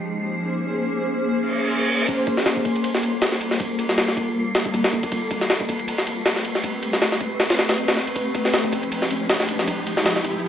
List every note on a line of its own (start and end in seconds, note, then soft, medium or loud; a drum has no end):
0.00 2.06 A#3 medium
0.00 2.06 C#4 medium
0.00 2.06 G#4 medium
0.00 2.06 C5 medium
0.00 2.07 C7 medium
1.32 reverse cymbal medium
2.08 10.48 C7 medium
2.08 kick loud
2.08 ride medium
2.08 riser medium
2.27 kick medium
2.27 ride medium
2.37 snare soft
2.46 snare loud
2.46 ride medium
2.56 kick medium
2.65 kick medium
2.65 ride medium
2.76 ride soft
2.84 ride medium
2.95 snare soft
3.03 ride medium
3.22 snare loud
3.22 ride medium
3.32 snare soft
3.41 ride medium
3.51 snare soft
3.60 kick loud
3.60 ride medium
3.79 ride medium
3.89 snare medium
3.98 snare loud
3.98 ride medium
4.08 snare soft
4.17 kick medium
4.17 ride medium
4.55 snare loud
4.55 ride medium
4.65 kick medium
4.74 kick medium
4.74 ride medium
4.84 snare loud
4.84 ride medium
4.93 kick medium
5.03 kick medium
5.03 ride medium
5.12 kick loud
5.12 ride medium
5.31 kick medium
5.31 ride medium
5.41 snare soft
5.50 snare loud
5.50 ride medium
5.60 kick medium
5.69 kick medium
5.69 ride medium
5.79 ride soft
5.88 ride medium
5.98 snare soft
6.07 ride medium
6.26 snare loud
6.26 ride medium
6.36 snare soft
6.45 ride medium
6.55 snare soft
6.64 kick loud
6.64 ride medium
6.83 ride medium
6.93 snare medium
7.02 snare loud
7.02 ride medium
7.12 snare soft
7.21 kick medium
7.21 ride medium
7.40 snare loud
7.40 ride medium
7.50 snare loud
7.50 ride medium
7.59 snare loud
7.59 ride medium
7.69 snare loud
7.69 ride medium
7.78 ride medium
7.88 snare loud
7.88 ride medium
7.97 snare soft
8.07 ride medium
8.16 kick loud
8.16 ride medium
8.35 kick medium
8.35 ride medium
8.45 snare soft
8.54 snare loud
8.54 ride medium
8.64 kick loud
8.73 kick medium
8.73 ride medium
8.83 ride soft
8.92 ride medium
9.02 snare soft
9.11 ride medium
9.29 snare loud
9.29 ride medium
9.40 snare soft
9.49 ride medium
9.59 snare soft
9.68 kick loud
9.68 ride medium
9.87 ride medium
9.97 snare medium
10.06 snare loud
10.06 ride medium
10.16 snare soft
10.24 kick medium
10.24 ride medium